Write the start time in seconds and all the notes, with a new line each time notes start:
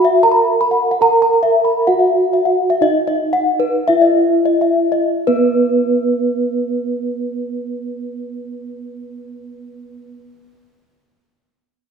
Already playing: F#4
0.05 E5
0.23 A#4 A#5
0.32 B5
0.61 B5
0.71 F#5
0.91 F#5
1.01 A#4 A#5
1.22 A#5
1.43 E5
1.65 B5
1.87 F#4 F#5
1.99 E5
2.33 E5
2.45 F#5
2.70 E5
2.81 D#4 D#5
3.07 D#5
3.33 F#5
3.60 B4
3.88 E4 E5
4.02 D#5
4.46 D#5
4.61 E5
4.92 D#5
5.27 B3 B4